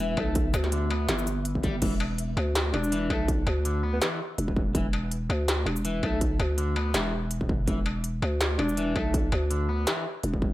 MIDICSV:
0, 0, Header, 1, 7, 480
1, 0, Start_track
1, 0, Key_signature, 1, "minor"
1, 0, Tempo, 365854
1, 468, Time_signature, 4, 2, 24, 8
1, 13819, End_track
2, 0, Start_track
2, 0, Title_t, "Synth texture"
2, 0, Program_c, 0, 99
2, 0, Note_on_c, 0, 59, 86
2, 0, Note_on_c, 0, 76, 85
2, 2397, Note_off_c, 0, 59, 0
2, 2418, Note_off_c, 0, 76, 0
2, 13819, End_track
3, 0, Start_track
3, 0, Title_t, "Alto saxophone"
3, 0, Program_c, 1, 65
3, 3582, Note_on_c, 1, 62, 94
3, 4065, Note_off_c, 1, 62, 0
3, 5154, Note_on_c, 1, 59, 90
3, 5227, Note_off_c, 1, 59, 0
3, 5262, Note_on_c, 1, 59, 79
3, 5348, Note_off_c, 1, 59, 0
3, 11264, Note_on_c, 1, 62, 94
3, 11746, Note_off_c, 1, 62, 0
3, 13819, End_track
4, 0, Start_track
4, 0, Title_t, "Clean electric guitar"
4, 0, Program_c, 2, 27
4, 0, Note_on_c, 2, 52, 102
4, 207, Note_off_c, 2, 52, 0
4, 228, Note_on_c, 2, 57, 78
4, 457, Note_off_c, 2, 57, 0
4, 949, Note_on_c, 2, 50, 81
4, 1167, Note_off_c, 2, 50, 0
4, 1188, Note_on_c, 2, 59, 79
4, 1417, Note_off_c, 2, 59, 0
4, 1431, Note_on_c, 2, 52, 79
4, 1659, Note_off_c, 2, 52, 0
4, 2149, Note_on_c, 2, 55, 106
4, 2294, Note_off_c, 2, 55, 0
4, 2386, Note_on_c, 2, 52, 81
4, 2532, Note_off_c, 2, 52, 0
4, 3831, Note_on_c, 2, 52, 105
4, 4048, Note_off_c, 2, 52, 0
4, 4070, Note_on_c, 2, 57, 81
4, 4298, Note_off_c, 2, 57, 0
4, 4790, Note_on_c, 2, 50, 81
4, 5007, Note_off_c, 2, 50, 0
4, 5028, Note_on_c, 2, 59, 78
4, 5257, Note_off_c, 2, 59, 0
4, 5268, Note_on_c, 2, 52, 85
4, 5497, Note_off_c, 2, 52, 0
4, 6227, Note_on_c, 2, 52, 80
4, 6373, Note_off_c, 2, 52, 0
4, 7675, Note_on_c, 2, 52, 103
4, 7890, Note_off_c, 2, 52, 0
4, 7915, Note_on_c, 2, 57, 80
4, 8141, Note_off_c, 2, 57, 0
4, 8630, Note_on_c, 2, 50, 80
4, 8847, Note_off_c, 2, 50, 0
4, 8871, Note_on_c, 2, 59, 79
4, 9099, Note_off_c, 2, 59, 0
4, 9111, Note_on_c, 2, 52, 80
4, 9339, Note_off_c, 2, 52, 0
4, 10069, Note_on_c, 2, 52, 84
4, 10214, Note_off_c, 2, 52, 0
4, 11510, Note_on_c, 2, 52, 103
4, 11727, Note_off_c, 2, 52, 0
4, 11752, Note_on_c, 2, 57, 78
4, 11979, Note_off_c, 2, 57, 0
4, 12472, Note_on_c, 2, 50, 80
4, 12688, Note_off_c, 2, 50, 0
4, 12711, Note_on_c, 2, 59, 81
4, 12939, Note_off_c, 2, 59, 0
4, 12951, Note_on_c, 2, 52, 83
4, 13179, Note_off_c, 2, 52, 0
4, 13819, End_track
5, 0, Start_track
5, 0, Title_t, "808-style bass"
5, 0, Program_c, 3, 38
5, 0, Note_on_c, 3, 28, 98
5, 209, Note_off_c, 3, 28, 0
5, 228, Note_on_c, 3, 35, 99
5, 691, Note_off_c, 3, 35, 0
5, 704, Note_on_c, 3, 38, 94
5, 1408, Note_off_c, 3, 38, 0
5, 1426, Note_on_c, 3, 31, 103
5, 2370, Note_off_c, 3, 31, 0
5, 2388, Note_on_c, 3, 28, 98
5, 3091, Note_off_c, 3, 28, 0
5, 3106, Note_on_c, 3, 38, 99
5, 3570, Note_off_c, 3, 38, 0
5, 3591, Note_on_c, 3, 28, 102
5, 4052, Note_off_c, 3, 28, 0
5, 4068, Note_on_c, 3, 35, 100
5, 4531, Note_off_c, 3, 35, 0
5, 4548, Note_on_c, 3, 38, 96
5, 5250, Note_off_c, 3, 38, 0
5, 5750, Note_on_c, 3, 28, 96
5, 6212, Note_off_c, 3, 28, 0
5, 6230, Note_on_c, 3, 28, 99
5, 6932, Note_off_c, 3, 28, 0
5, 6948, Note_on_c, 3, 38, 100
5, 7411, Note_off_c, 3, 38, 0
5, 7423, Note_on_c, 3, 28, 101
5, 7888, Note_off_c, 3, 28, 0
5, 7912, Note_on_c, 3, 35, 100
5, 8372, Note_off_c, 3, 35, 0
5, 8390, Note_on_c, 3, 38, 98
5, 9092, Note_off_c, 3, 38, 0
5, 9105, Note_on_c, 3, 28, 104
5, 10049, Note_off_c, 3, 28, 0
5, 10070, Note_on_c, 3, 28, 98
5, 10772, Note_off_c, 3, 28, 0
5, 10789, Note_on_c, 3, 38, 99
5, 11251, Note_off_c, 3, 38, 0
5, 11270, Note_on_c, 3, 28, 97
5, 11732, Note_off_c, 3, 28, 0
5, 11753, Note_on_c, 3, 35, 99
5, 12213, Note_off_c, 3, 35, 0
5, 12232, Note_on_c, 3, 38, 100
5, 12933, Note_off_c, 3, 38, 0
5, 13431, Note_on_c, 3, 28, 97
5, 13819, Note_off_c, 3, 28, 0
5, 13819, End_track
6, 0, Start_track
6, 0, Title_t, "Struck metal"
6, 224, Note_on_c, 9, 77, 55
6, 355, Note_off_c, 9, 77, 0
6, 705, Note_on_c, 9, 77, 84
6, 837, Note_off_c, 9, 77, 0
6, 1187, Note_on_c, 9, 77, 64
6, 1319, Note_off_c, 9, 77, 0
6, 2626, Note_on_c, 9, 77, 83
6, 2757, Note_off_c, 9, 77, 0
6, 3109, Note_on_c, 9, 77, 64
6, 3241, Note_off_c, 9, 77, 0
6, 3591, Note_on_c, 9, 77, 67
6, 3722, Note_off_c, 9, 77, 0
6, 4070, Note_on_c, 9, 77, 55
6, 4201, Note_off_c, 9, 77, 0
6, 4549, Note_on_c, 9, 77, 78
6, 4680, Note_off_c, 9, 77, 0
6, 6471, Note_on_c, 9, 77, 77
6, 6602, Note_off_c, 9, 77, 0
6, 6951, Note_on_c, 9, 77, 58
6, 7083, Note_off_c, 9, 77, 0
6, 7432, Note_on_c, 9, 77, 62
6, 7563, Note_off_c, 9, 77, 0
6, 7911, Note_on_c, 9, 77, 53
6, 8042, Note_off_c, 9, 77, 0
6, 8392, Note_on_c, 9, 77, 78
6, 8523, Note_off_c, 9, 77, 0
6, 8870, Note_on_c, 9, 77, 61
6, 9002, Note_off_c, 9, 77, 0
6, 10309, Note_on_c, 9, 77, 77
6, 10440, Note_off_c, 9, 77, 0
6, 10790, Note_on_c, 9, 77, 59
6, 10921, Note_off_c, 9, 77, 0
6, 11268, Note_on_c, 9, 77, 62
6, 11399, Note_off_c, 9, 77, 0
6, 11751, Note_on_c, 9, 77, 52
6, 11882, Note_off_c, 9, 77, 0
6, 12229, Note_on_c, 9, 77, 81
6, 12360, Note_off_c, 9, 77, 0
6, 13819, End_track
7, 0, Start_track
7, 0, Title_t, "Drums"
7, 228, Note_on_c, 9, 36, 61
7, 359, Note_off_c, 9, 36, 0
7, 463, Note_on_c, 9, 42, 85
7, 468, Note_on_c, 9, 36, 117
7, 594, Note_off_c, 9, 42, 0
7, 599, Note_off_c, 9, 36, 0
7, 705, Note_on_c, 9, 82, 70
7, 837, Note_off_c, 9, 82, 0
7, 837, Note_on_c, 9, 38, 36
7, 946, Note_on_c, 9, 42, 69
7, 968, Note_off_c, 9, 38, 0
7, 1077, Note_off_c, 9, 42, 0
7, 1424, Note_on_c, 9, 38, 111
7, 1424, Note_on_c, 9, 42, 81
7, 1556, Note_off_c, 9, 38, 0
7, 1556, Note_off_c, 9, 42, 0
7, 1556, Note_on_c, 9, 82, 72
7, 1667, Note_off_c, 9, 82, 0
7, 1667, Note_on_c, 9, 42, 40
7, 1667, Note_on_c, 9, 82, 70
7, 1798, Note_off_c, 9, 42, 0
7, 1798, Note_off_c, 9, 82, 0
7, 1904, Note_on_c, 9, 42, 68
7, 2036, Note_off_c, 9, 42, 0
7, 2038, Note_on_c, 9, 36, 62
7, 2144, Note_on_c, 9, 42, 39
7, 2149, Note_off_c, 9, 36, 0
7, 2149, Note_on_c, 9, 36, 104
7, 2276, Note_off_c, 9, 42, 0
7, 2280, Note_off_c, 9, 36, 0
7, 2386, Note_on_c, 9, 42, 84
7, 2386, Note_on_c, 9, 49, 113
7, 2389, Note_on_c, 9, 36, 122
7, 2517, Note_off_c, 9, 42, 0
7, 2517, Note_off_c, 9, 49, 0
7, 2521, Note_off_c, 9, 36, 0
7, 2866, Note_on_c, 9, 42, 71
7, 2997, Note_off_c, 9, 42, 0
7, 3351, Note_on_c, 9, 38, 123
7, 3351, Note_on_c, 9, 42, 80
7, 3482, Note_off_c, 9, 38, 0
7, 3482, Note_off_c, 9, 42, 0
7, 3721, Note_on_c, 9, 82, 68
7, 3833, Note_on_c, 9, 42, 71
7, 3853, Note_off_c, 9, 82, 0
7, 3964, Note_off_c, 9, 42, 0
7, 4068, Note_on_c, 9, 36, 65
7, 4200, Note_off_c, 9, 36, 0
7, 4308, Note_on_c, 9, 36, 127
7, 4310, Note_on_c, 9, 42, 87
7, 4440, Note_off_c, 9, 36, 0
7, 4441, Note_off_c, 9, 42, 0
7, 4791, Note_on_c, 9, 42, 71
7, 4922, Note_off_c, 9, 42, 0
7, 5269, Note_on_c, 9, 38, 121
7, 5269, Note_on_c, 9, 42, 82
7, 5269, Note_on_c, 9, 82, 35
7, 5400, Note_off_c, 9, 38, 0
7, 5400, Note_off_c, 9, 42, 0
7, 5400, Note_off_c, 9, 82, 0
7, 5751, Note_on_c, 9, 42, 69
7, 5879, Note_on_c, 9, 36, 65
7, 5882, Note_off_c, 9, 42, 0
7, 5990, Note_off_c, 9, 36, 0
7, 5990, Note_on_c, 9, 36, 115
7, 6121, Note_off_c, 9, 36, 0
7, 6229, Note_on_c, 9, 36, 127
7, 6230, Note_on_c, 9, 42, 83
7, 6360, Note_off_c, 9, 36, 0
7, 6361, Note_off_c, 9, 42, 0
7, 6711, Note_on_c, 9, 42, 71
7, 6842, Note_off_c, 9, 42, 0
7, 7193, Note_on_c, 9, 38, 127
7, 7193, Note_on_c, 9, 42, 82
7, 7324, Note_off_c, 9, 38, 0
7, 7324, Note_off_c, 9, 42, 0
7, 7562, Note_on_c, 9, 82, 67
7, 7672, Note_on_c, 9, 42, 68
7, 7693, Note_off_c, 9, 82, 0
7, 7803, Note_off_c, 9, 42, 0
7, 7912, Note_on_c, 9, 36, 65
7, 8043, Note_off_c, 9, 36, 0
7, 8151, Note_on_c, 9, 42, 84
7, 8152, Note_on_c, 9, 36, 124
7, 8282, Note_off_c, 9, 42, 0
7, 8284, Note_off_c, 9, 36, 0
7, 8631, Note_on_c, 9, 42, 68
7, 8762, Note_off_c, 9, 42, 0
7, 9108, Note_on_c, 9, 38, 124
7, 9108, Note_on_c, 9, 42, 77
7, 9108, Note_on_c, 9, 82, 36
7, 9239, Note_off_c, 9, 38, 0
7, 9239, Note_off_c, 9, 42, 0
7, 9239, Note_off_c, 9, 82, 0
7, 9587, Note_on_c, 9, 42, 66
7, 9718, Note_off_c, 9, 42, 0
7, 9721, Note_on_c, 9, 36, 65
7, 9831, Note_off_c, 9, 36, 0
7, 9831, Note_on_c, 9, 36, 114
7, 9962, Note_off_c, 9, 36, 0
7, 10070, Note_on_c, 9, 42, 79
7, 10071, Note_on_c, 9, 36, 122
7, 10201, Note_off_c, 9, 42, 0
7, 10202, Note_off_c, 9, 36, 0
7, 10547, Note_on_c, 9, 42, 66
7, 10678, Note_off_c, 9, 42, 0
7, 11029, Note_on_c, 9, 38, 119
7, 11029, Note_on_c, 9, 42, 77
7, 11160, Note_off_c, 9, 38, 0
7, 11160, Note_off_c, 9, 42, 0
7, 11399, Note_on_c, 9, 82, 70
7, 11510, Note_on_c, 9, 42, 65
7, 11531, Note_off_c, 9, 82, 0
7, 11641, Note_off_c, 9, 42, 0
7, 11752, Note_on_c, 9, 36, 64
7, 11883, Note_off_c, 9, 36, 0
7, 11992, Note_on_c, 9, 36, 120
7, 11992, Note_on_c, 9, 42, 77
7, 12123, Note_off_c, 9, 36, 0
7, 12123, Note_off_c, 9, 42, 0
7, 12472, Note_on_c, 9, 42, 66
7, 12603, Note_off_c, 9, 42, 0
7, 12949, Note_on_c, 9, 38, 117
7, 12949, Note_on_c, 9, 42, 76
7, 12949, Note_on_c, 9, 82, 39
7, 13080, Note_off_c, 9, 38, 0
7, 13080, Note_off_c, 9, 42, 0
7, 13080, Note_off_c, 9, 82, 0
7, 13428, Note_on_c, 9, 42, 64
7, 13559, Note_off_c, 9, 42, 0
7, 13561, Note_on_c, 9, 36, 62
7, 13672, Note_off_c, 9, 36, 0
7, 13672, Note_on_c, 9, 36, 107
7, 13803, Note_off_c, 9, 36, 0
7, 13819, End_track
0, 0, End_of_file